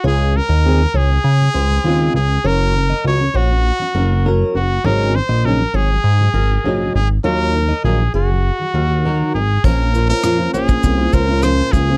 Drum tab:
CC |----------------|----------------|----------------|----------------|
SH |----------------|----------------|----------------|----------------|
SD |----------------|----------------|----------------|----------------|
BD |----------------|----------------|----------------|----------------|

CC |x---------------|
SH |--x-x-xxx-x-x-x-|
SD |----r-------r-r-|
BD |o------oo-o---o-|